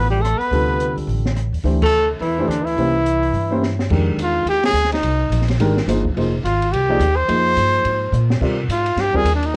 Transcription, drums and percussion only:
0.25 cross-stick, closed hi-hat
0.41 open hi-hat
0.53 open hi-hat
0.80 closed hi-hat
0.98 open hi-hat
1.09 open hi-hat
1.26 snare
1.36 cross-stick, closed hi-hat
1.54 open hi-hat
1.66 open hi-hat
1.82 kick, ride
2.22 open hi-hat
2.51 cross-stick, closed hi-hat
2.67 open hi-hat
2.78 open hi-hat
3.06 closed hi-hat
3.23 open hi-hat
3.34 open hi-hat
3.63 snare
3.79 snare
3.90 kick, crash
4.19 hi-hat pedal, ride
4.47 ride
4.64 snare, ride
4.75 hi-hat pedal
4.84 snare
4.92 snare, ride
5.03 ride
5.32 hi-hat pedal, ride
5.41 snare
5.48 snare, ride
5.60 ride
5.77 snare
5.89 hi-hat pedal, ride
6.05 kick
6.17 ride
6.45 hi-hat pedal, ride
6.62 ride
6.73 ride
7.00 hi-hat pedal, ride
7.28 ride
7.56 hi-hat pedal, ride
7.85 ride
8.13 hi-hat pedal
8.30 snare
8.41 kick, crash
8.70 hi-hat pedal, ride
8.86 ride
8.98 snare, ride
9.14 kick
9.26 hi-hat pedal, ride
9.43 ride

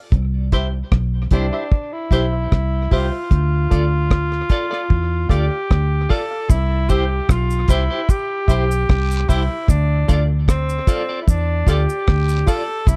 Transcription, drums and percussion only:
0.12 kick, hi-hat pedal
0.52 kick, closed hi-hat
0.92 kick, cross-stick
1.31 kick, closed hi-hat
1.72 kick
2.11 kick, closed hi-hat
2.52 kick, cross-stick
2.91 kick, open hi-hat
3.31 kick, hi-hat pedal
3.71 kick, closed hi-hat
4.11 kick, cross-stick
4.32 cross-stick
4.49 kick, closed hi-hat
4.73 cross-stick
4.90 kick
5.29 kick, closed hi-hat
5.71 kick, cross-stick
6.10 kick, open hi-hat
6.50 kick, cabasa
6.89 kick, closed hi-hat, cabasa
7.29 kick, cross-stick, cabasa
7.50 cabasa
7.68 kick, closed hi-hat, cabasa
8.09 kick, cabasa
8.48 kick, closed hi-hat, cabasa
8.71 cabasa
8.89 kick, cross-stick, long guiro
9.11 cabasa
9.28 kick, open hi-hat, cabasa
9.68 kick, hi-hat pedal, cabasa
10.09 kick, closed hi-hat, cabasa
10.48 kick, cross-stick, cabasa
10.69 cabasa
10.87 kick, closed hi-hat, cabasa
11.28 kick, cabasa
11.67 kick, closed hi-hat, cabasa
11.89 cabasa
12.07 kick, cross-stick, long guiro
12.29 cabasa
12.47 kick, open hi-hat, cabasa
12.87 kick, hi-hat pedal, cabasa

